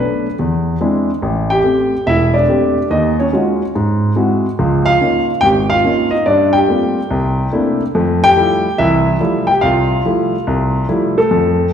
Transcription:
0.00 0.25 A3 soft
0.00 0.25 B3 soft
0.00 0.26 D4 soft
0.00 0.34 B4 medium
0.39 0.75 E2 medium
0.81 1.09 G#3 medium
0.81 1.09 C4 soft
0.81 1.10 D4 soft
0.81 1.10 E4 medium
1.22 1.59 A1 medium
1.50 1.63 G4 medium
1.50 2.08 G5 medium
1.63 1.93 A3 soft
1.63 1.93 C4 soft
1.63 1.93 G4 medium
2.06 2.43 E1 medium
2.06 2.33 E4 medium
2.06 2.35 E5 medium
2.34 2.87 D4 medium
2.34 2.92 D5 medium
2.48 2.77 A3 soft
2.48 2.77 C4 soft
2.48 2.77 G4 medium
2.91 3.27 D#2 medium
2.91 3.16 D#4 medium
2.91 3.19 D#5 medium
3.20 3.31 C#4 medium
3.20 3.71 C#5 medium
3.33 3.61 G#3 soft
3.33 3.61 C#4 soft
3.33 3.62 D#4 soft
3.33 3.62 F4 soft
3.33 3.62 F#4 medium
3.75 4.11 G#2 medium
4.16 4.45 G#3 medium
4.16 4.45 C4 soft
4.16 4.45 E4 soft
4.16 4.45 F#4 medium
4.59 4.95 C#2 medium
4.59 4.95 F3 medium
4.86 5.00 F4 medium
4.86 5.25 F5 loud
5.01 5.30 A#3 soft
5.01 5.30 C#4 soft
5.01 5.30 D#4 soft
5.01 5.30 F4 soft
5.41 5.79 G#1 medium
5.41 5.50 G4 medium
5.41 5.47 G5 loud
5.70 5.84 F4 medium
5.70 6.09 F5 medium
5.84 6.13 A#3 medium
5.84 6.13 C#4 soft
5.84 6.12 D#4 soft
5.84 6.14 F4 medium
6.11 6.26 D#4 medium
6.11 6.25 D#5 medium
6.26 6.63 G2 medium
6.26 6.54 D5 medium
6.30 6.54 D4 medium
6.53 7.77 G4 medium
6.53 7.75 G5 medium
6.68 6.97 G3 soft
6.68 6.97 A3 soft
6.68 6.97 A#3 soft
6.68 6.98 C4 soft
6.68 6.98 F4 soft
7.10 7.47 C2 medium
7.53 7.81 A3 medium
7.53 7.82 A#3 medium
7.53 7.82 C4 soft
7.53 7.82 D4 soft
7.53 7.82 E4 medium
7.95 8.31 F2 medium
7.95 8.31 A3 medium
8.24 8.77 G4 medium
8.24 8.81 G5 loud
8.37 8.66 F3 medium
8.37 8.66 G3 soft
8.37 8.66 A3 medium
8.37 8.66 E4 medium
8.78 9.15 C2 medium
8.78 9.15 E3 medium
8.78 9.20 E4 medium
8.78 9.44 E5 loud
9.20 9.49 F3 medium
9.20 9.50 G3 medium
9.20 9.50 A3 medium
9.20 9.50 E4 medium
9.47 9.62 G5 medium
9.51 9.63 G4 medium
9.61 9.99 C2 medium
9.61 10.86 F4 medium
9.61 10.84 F5 medium
10.06 10.34 F3 medium
10.06 10.34 G3 soft
10.06 10.34 A3 soft
10.06 10.35 E4 medium
10.47 10.83 C2 medium
10.89 11.18 F3 medium
10.89 11.18 G3 medium
10.89 11.18 A3 medium
10.89 11.18 E4 medium
11.18 11.71 A3 medium
11.18 11.70 A4 medium
11.31 11.68 F2 medium

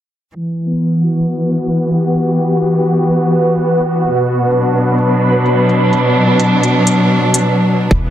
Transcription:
0.35 4.13 E3 medium
0.35 7.44 B4 medium
0.66 5.66 B3 medium
0.73 closed hi-hat medium
1.02 5.67 F#4 medium
1.20 closed hi-hat medium
1.67 closed hi-hat medium
1.91 4.13 G4 medium
1.91 closed hi-hat soft
2.15 closed hi-hat soft
2.62 closed hi-hat medium
3.09 closed hi-hat medium
3.57 closed hi-hat medium
3.80 closed hi-hat soft
4.04 closed hi-hat medium
4.13 7.91 B2 medium
4.50 7.91 F#3 medium
4.50 7.91 D4 medium
4.50 closed hi-hat medium
4.98 closed hi-hat medium
5.46 closed hi-hat soft
5.69 closed hi-hat soft
5.93 closed hi-hat medium
6.40 closed hi-hat medium
6.63 closed hi-hat soft
6.87 closed hi-hat medium
7.34 closed hi-hat medium
7.91 8.10 E1 medium
7.91 8.10 E3 medium
7.91 8.10 C#5 medium
7.91 kick loud
8.05 8.10 B3 medium

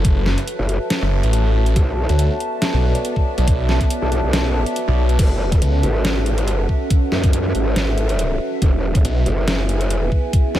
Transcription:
0.00 0.36 F#1 loud
0.00 5.15 F#4 medium
0.00 1.73 A4 medium
0.00 10.59 B4 medium
0.00 5.15 C#5 medium
0.00 10.59 E5 medium
0.00 8.62 A5 medium
0.05 kick loud
0.05 closed hi-hat medium
0.26 snare medium
0.38 closed hi-hat medium
0.48 closed hi-hat medium
0.59 0.79 F#1 loud
0.69 closed hi-hat soft
0.90 snare loud
0.90 closed hi-hat medium
1.02 1.22 F#1 medium
1.23 1.75 A1 loud
1.23 closed hi-hat soft
1.33 closed hi-hat medium
1.66 closed hi-hat soft
1.76 2.07 B1 loud
1.76 5.16 B3 medium
1.76 5.16 A4 medium
1.76 5.16 D5 medium
1.76 kick loud
1.76 closed hi-hat medium
2.09 2.29 D2 medium
2.09 closed hi-hat soft
2.19 closed hi-hat medium
2.40 closed hi-hat medium
2.62 snare loud
2.62 closed hi-hat medium
2.74 2.93 B1 loud
2.95 closed hi-hat medium
3.05 closed hi-hat medium
3.16 kick medium
3.38 3.79 B1 loud
3.38 closed hi-hat medium
3.47 kick loud
3.47 closed hi-hat medium
3.69 snare medium
3.81 kick medium
3.81 closed hi-hat medium
3.90 closed hi-hat medium
4.02 4.22 B1 loud
4.12 closed hi-hat medium
4.23 4.64 B1 loud
4.33 snare loud
4.33 closed hi-hat medium
4.66 closed hi-hat medium
4.76 closed hi-hat medium
4.88 5.17 B1 loud
5.09 closed hi-hat medium
5.19 5.60 F#1 medium
5.19 8.58 C#4 medium
5.19 8.58 F#4 medium
5.19 8.58 A4 medium
5.19 kick loud
5.19 closed hi-hat medium
5.19 crash loud
5.52 kick loud
5.52 closed hi-hat medium
5.62 5.82 C#2 loud
5.62 closed hi-hat medium
5.83 6.42 G#1 medium
5.83 closed hi-hat medium
6.05 snare loud
6.05 closed hi-hat medium
6.26 closed hi-hat medium
6.38 closed hi-hat medium
6.42 6.67 G1 medium
6.48 closed hi-hat medium
6.69 kick medium
6.90 kick loud
6.90 closed hi-hat medium
7.12 7.53 F#2 loud
7.12 snare medium
7.24 kick loud
7.24 closed hi-hat medium
7.33 closed hi-hat medium
7.55 8.39 G#1 medium
7.55 closed hi-hat medium
7.76 snare loud
7.76 closed hi-hat medium
7.98 closed hi-hat medium
8.09 closed hi-hat medium
8.19 closed hi-hat medium
8.62 9.03 E1 medium
8.62 10.59 B3 medium
8.62 10.59 E4 medium
8.62 10.59 G#4 medium
8.62 kick loud
8.62 closed hi-hat medium
8.95 kick loud
8.95 closed hi-hat medium
9.05 9.25 B1 loud
9.05 closed hi-hat medium
9.18 10.59 G#5 medium
9.26 9.85 F#1 medium
9.26 closed hi-hat medium
9.48 snare loud
9.48 closed hi-hat medium
9.69 closed hi-hat medium
9.81 closed hi-hat medium
9.85 10.10 F1 medium
9.90 closed hi-hat medium
10.12 kick medium
10.33 kick loud
10.33 closed hi-hat medium
10.55 10.59 E2 loud
10.55 snare medium

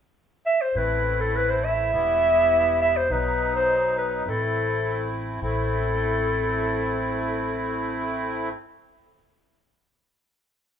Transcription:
0.46 0.63 E5 medium
0.61 0.79 C5 medium
0.75 1.90 A1 medium
0.75 1.90 A3 medium
0.75 1.91 C4 medium
0.75 1.91 E4 medium
0.75 1.22 B4 medium
1.20 1.37 A4 medium
1.36 1.51 B4 medium
1.50 1.66 C5 medium
1.64 2.81 E5 loud
1.92 3.07 E1 medium
1.92 3.07 G3 medium
1.92 3.07 B3 medium
1.92 3.07 E4 medium
2.82 2.98 E5 medium
2.97 3.13 C5 medium
3.08 4.24 B1 medium
3.08 4.23 B2 medium
3.08 4.23 F#3 medium
3.08 4.23 D#4 medium
3.12 3.54 B4 medium
3.56 3.95 C5 medium
3.98 4.31 B4 medium
4.25 5.39 A1 medium
4.25 5.39 A3 medium
4.25 5.40 C4 medium
4.25 5.40 E4 medium
4.25 5.14 A4 medium
5.42 8.52 A1 medium
5.42 8.49 A3 medium
5.42 8.49 C4 medium
5.42 8.49 E4 medium
5.42 8.49 A4 medium

